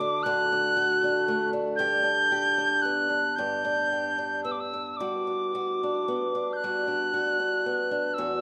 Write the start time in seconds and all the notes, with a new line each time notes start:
Already playing: D3 A3 F#4 D6
0.01 D4
0.23 D3 F#4 F#6
0.52 D4
0.77 F#4
1.04 D4
1.28 A3
1.53 D4
1.76 G2 G4 G6
2.03 D4
2.32 G4
2.58 D4
2.82 B3 F#6
3.10 D4
3.36 G2 G4 G6
3.65 D4
3.92 G4
4.18 D4
4.44 B3 E6
4.52 D6
4.60 E6
4.74 D4
4.92 E6
4.97 G3 F#4 D6
5.27 D4
5.55 F#4
5.83 D4
6.08 B3
6.35 D4
6.53 F#6 G6
6.64 G3 F#4
6.88 D4
7.14 F#4
7.40 D4
7.66 B3
7.91 D4
8.06 F#6
8.14 E6
8.18 E2 F#4